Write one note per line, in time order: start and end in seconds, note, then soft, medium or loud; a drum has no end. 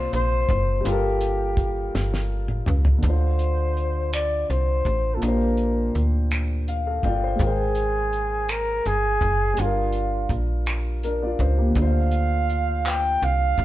0.00 0.79 C3 medium
0.00 0.81 A#3 medium
0.00 0.83 F4 medium
0.00 0.14 C5 loud
0.00 0.85 D5 medium
0.13 0.45 A#1 medium
0.13 0.89 C5 loud
0.13 closed hi-hat medium
0.49 0.82 F#1 loud
0.49 kick loud
0.49 closed hi-hat soft
0.80 2.97 G3 medium
0.84 1.90 G1 loud
0.84 2.99 F4 medium
0.84 2.32 G4 medium
0.84 3.01 A4 medium
0.84 closed hi-hat medium
0.92 3.03 A#4 medium
1.21 closed hi-hat medium
1.57 kick medium
1.57 closed hi-hat medium
1.95 2.63 G1 medium
1.95 snare medium
2.14 snare medium
2.48 mid tom medium
2.66 3.00 C#2 loud
2.66 mid tom medium
2.85 floor tom loud
2.98 5.15 D3 medium
2.98 5.17 D4 soft
3.03 4.45 D2 loud
3.03 5.19 F4 medium
3.03 4.09 C5 medium
3.03 kick medium
3.03 closed hi-hat medium
3.10 5.21 C5 medium
3.39 closed hi-hat medium
3.77 closed hi-hat soft
4.13 4.52 D5 loud
4.13 finger snap medium
4.13 closed hi-hat medium
4.50 4.82 C2 medium
4.50 5.16 C5 medium
4.50 closed hi-hat soft
4.85 5.18 A1 medium
4.85 kick medium
4.85 closed hi-hat soft
5.15 7.33 A#2 medium
5.15 5.24 A4 soft
5.20 5.91 A#1 loud
5.20 7.35 A#3 medium
5.20 7.36 D4 medium
5.20 6.04 A#4 medium
5.20 closed hi-hat medium
5.25 6.66 G4 medium
5.25 6.67 C5 medium
5.57 closed hi-hat medium
5.95 7.00 D2 medium
5.95 closed hi-hat soft
6.31 finger snap medium
6.31 closed hi-hat medium
6.68 6.85 F5 medium
6.68 closed hi-hat soft
6.86 7.03 A4 soft
6.86 7.03 F5 medium
7.03 7.36 G1 medium
7.03 7.22 F4 medium
7.03 7.21 D5 medium
7.03 7.38 G5 medium
7.03 kick medium
7.03 closed hi-hat soft
7.24 7.45 C5 medium
7.35 9.52 G#3 medium
7.35 9.54 G5 medium
7.35 closed hi-hat medium
7.39 8.81 G#1 loud
7.39 8.52 G#4 medium
7.39 9.56 A#4 medium
7.39 kick loud
7.47 9.57 C5 medium
7.75 closed hi-hat medium
8.13 closed hi-hat soft
8.49 8.88 A#4 loud
8.49 finger snap medium
8.49 closed hi-hat medium
8.86 9.18 G1 medium
8.86 9.62 G#4 loud
8.86 closed hi-hat soft
9.21 9.54 F#1 loud
9.21 kick medium
9.21 closed hi-hat soft
9.54 11.70 G3 medium
9.54 11.00 D4 medium
9.54 closed hi-hat medium
9.58 10.27 G1 loud
9.58 10.41 F4 medium
9.58 11.02 F4 medium
9.65 11.03 A#4 medium
9.93 closed hi-hat medium
10.29 11.35 A#1 medium
10.29 kick medium
10.29 closed hi-hat soft
10.66 finger snap medium
10.66 closed hi-hat medium
11.03 11.21 D4 medium
11.03 11.21 A#4 medium
11.03 closed hi-hat soft
11.22 11.40 F4 medium
11.22 11.39 D5 medium
11.39 11.72 C#2 medium
11.39 11.58 C5 medium
11.39 kick medium
11.39 closed hi-hat soft
11.58 11.93 A#3 soft
11.58 11.92 G4 medium
11.70 13.65 D3 medium
11.70 13.65 D4 medium
11.75 13.17 D2 loud
11.75 13.65 F4 medium
11.75 12.89 F5 medium
11.75 kick loud
11.75 closed hi-hat medium
11.82 13.65 C5 medium
12.11 closed hi-hat medium
12.50 closed hi-hat soft
12.86 13.26 G5 loud
12.86 clap medium
12.86 closed hi-hat medium
13.22 13.55 C2 medium
13.22 13.65 F5 loud
13.22 closed hi-hat soft
13.58 13.65 A1 loud
13.58 kick medium
13.58 closed hi-hat soft